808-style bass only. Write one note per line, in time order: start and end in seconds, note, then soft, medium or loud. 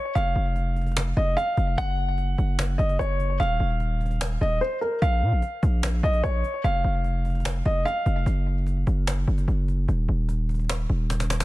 0.15 0.35 F1 loud
0.36 1.14 F1 loud
1.17 1.36 F1 loud
1.57 1.77 F1 loud
1.78 2.36 F#1 loud
2.38 2.77 F#1 loud
2.79 2.98 F#1 loud
2.99 3.38 F#1 loud
3.40 3.59 D#1 loud
3.60 4.38 D#1 loud
4.41 4.61 D#1 loud
5.02 5.24 A#1 loud
5.22 5.34 A#2 loud
5.32 5.42 A#1 loud
5.63 6.02 A#1 loud
6.03 6.23 A#1 loud
6.24 6.43 A#1 loud
6.64 6.84 F1 loud
6.84 7.62 F1 loud
7.66 7.85 F1 loud
8.06 8.25 F1 loud
8.26 8.85 F#1 loud
8.87 9.26 F#1 loud
9.28 9.47 F#1 loud
9.48 9.87 F#1 loud
9.88 10.08 D#1 loud
10.09 10.87 D#1 loud
10.90 11.44 D#1 loud